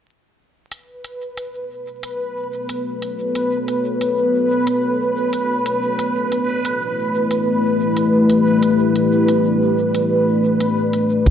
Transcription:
0.71 B3 B4, closed hi-hat
0.78 F#4
0.97 A4
1.04 closed hi-hat
1.10 C#5
1.37 closed hi-hat
1.82 D5
2.03 closed hi-hat
2.69 closed hi-hat
3.02 closed hi-hat
3.35 closed hi-hat
3.68 closed hi-hat
4.01 closed hi-hat
4.67 closed hi-hat
5.33 closed hi-hat
5.66 closed hi-hat
5.99 A3, closed hi-hat
6.08 E4
6.32 closed hi-hat
6.60 G4
6.65 closed hi-hat
6.85 B4
7.31 closed hi-hat
7.97 closed hi-hat
8.30 closed hi-hat
8.63 closed hi-hat
8.96 closed hi-hat
9.29 closed hi-hat
9.95 closed hi-hat
10.60 closed hi-hat
10.93 closed hi-hat
11.26 B1 B3 F#5, kick, closed hi-hat

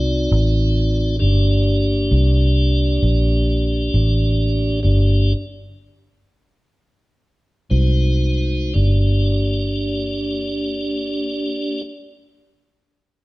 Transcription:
Already playing: C2 C4 D#4 F#4 D5
0.32 A1
1.19 G1 A#3 D4 G4 D5
2.11 C2
3.03 A#1
3.94 A1
4.83 G1 A#3 D4 G4 D5
7.70 C2 G#3 D#4 F#4 C5
8.74 G1 A#3 D4 G4 D5

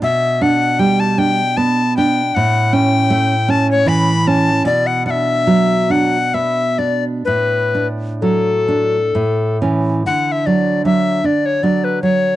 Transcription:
0.02 B2 E5
0.41 D4 F#5
0.79 G3 G5
1.00 A5
1.18 D4 G5
1.57 B3 A5
1.97 D4 G5
2.35 A2 F#5
2.73 C#4 G5
3.10 A3
3.48 C#4 A5
3.71 C#5
3.86 E3 B5
4.27 C#4 A5
4.65 B2 D5
4.87 F#5
5.06 D4 F#5
5.10 E5
5.47 F#3
5.90 D4 F#5
6.34 B3 E5
6.78 D4 D5
7.25 A2 B4
7.75 D4
8.21 F#3 A4
8.68 D4
9.15 A2
9.62 E3 C#4
10.06 D3 F#5
10.28 F#5
10.32 E5
10.46 F#3 D5
10.85 F#3 D4 E5
11.24 D4 D5
11.46 C#5
11.63 F#3 D4 D5
11.84 B4
12.02 F#3 C#5

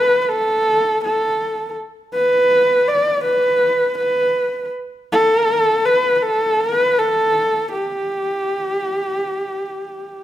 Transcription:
Already playing: B4
0.22 B4
0.29 A4
1.04 A4
2.14 B4
2.87 D5
3.24 B4
3.98 B4
5.12 A4
5.85 B4
6.15 B4
6.22 A4
6.60 B4
6.98 A4
7.72 G4

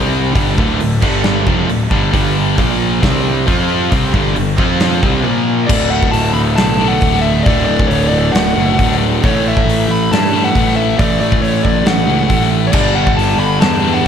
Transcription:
Already playing: C2 C3 G3 C4 G4 D5
0.34 G1 G2 D3 G3 D4 A4 E5, kick, open hi-hat
0.56 D1 D2 A2 D3, kick
0.80 D1 D2 A2, open hi-hat
1.01 G1 G2 D3 G3, kick, crash
1.24 snare
1.46 F1 F2 C3 F3 E5, kick
1.69 D1 D2 A2, open hi-hat
1.91 G1 G2 D3 G3, kick
2.12 G1 G2 D3 G3 A4, kick, open hi-hat
2.57 A#1 A#2 F3 A#3 F4 C5, kick, open hi-hat
3.01 C2 C3 G3 C4 G4 D5, kick, snare, open hi-hat
3.46 F2 F3 C4 F4, kick, open hi-hat
3.90 C2 C3 G3 C4 D4 A4, kick, open hi-hat
4.14 G1 G2 D3 G3, kick
4.36 G1 G2 D3, open hi-hat
4.58 F2 F3 C4 F4 G4, kick
4.80 snare, open hi-hat
5.02 C2 C3 G3 C4 D4 A4, kick
5.23 A#2 F3 A#3 F4 C5
5.67 D1 D2 A2 D4 A4 D5 E5, kick, crash
5.71 D3
5.90 F#5
6.03 kick
6.11 D1 A5, open hi-hat
6.33 D1 B5
6.56 B1 A5, snare, open hi-hat
6.79 A2 D3
6.83 D2
6.88 F#5
7.01 D1 D2 A2, kick, open hi-hat
7.06 D3
7.14 snare
7.21 E5
7.43 D1 D2 D5, kick, open hi-hat
7.48 A2 D3
7.65 D1 D5
7.80 kick
7.87 D1 C#5, open hi-hat
8.08 D1 D5
8.32 D1 F#5, open hi-hat
8.36 snare
8.55 F#1 A2 D3
8.60 D2
8.79 D1 D2 A2, kick, open hi-hat
8.84 D3
8.91 snare
9.22 A1 A2 E3 A3 E4 B4 C#5, kick, open hi-hat
9.48 E5
9.57 kick
9.66 A1, open hi-hat
9.88 A1 B5
10.11 G2 A5, snare, open hi-hat
10.32 A2 E3 A3
10.44 F#5
10.55 A1 A2 E3, kick, open hi-hat
10.59 A3
10.68 snare
10.76 E5
10.98 A1 A2 E3 A3 A4 D5, kick, open hi-hat
11.20 A1 D5
11.32 kick
11.42 A1 C#5, open hi-hat
11.64 A1 D5, kick
11.85 A1 F#5, snare, open hi-hat
12.07 C#2 A2 E3 A3
12.28 A1 A2 E3 A3, kick, open hi-hat
12.41 snare
12.67 C#5
12.72 G1 G2 D3 G3 D4 D5, kick, crash
12.77 G3
12.95 F#5
13.07 kick
13.17 G1 A5, open hi-hat
13.38 G1 B5
13.61 E2 A5, snare, open hi-hat
13.81 D3 G3
13.86 G2
13.94 F#5
14.04 G2

